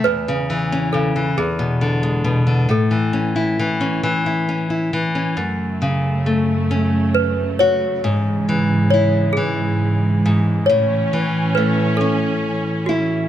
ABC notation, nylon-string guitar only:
X:1
M:6/8
L:1/16
Q:3/8=45
K:A
V:1 name="Nylon-string guitar" clef=bass
E,, C, E, C C, E, E,, B,, D, G, B,, D, | A,, E, C E E, C E, E C E E, C | F,,2 C,2 A,2 C4 F2 | G,,2 E,2 E2 E,4 G,,2 |
A,,2 E,2 A,2 C4 E2 |]